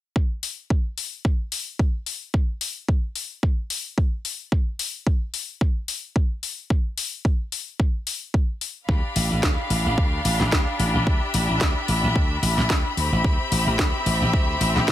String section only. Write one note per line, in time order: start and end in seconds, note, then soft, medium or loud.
8.89 12.94 D4 medium
8.89 12.94 G4 medium
8.89 11.05 F5 medium
8.89 14.92 B5 medium
11.07 12.96 E5 medium
12.97 14.92 C4 medium
12.97 14.92 G4 medium
12.97 14.92 E5 medium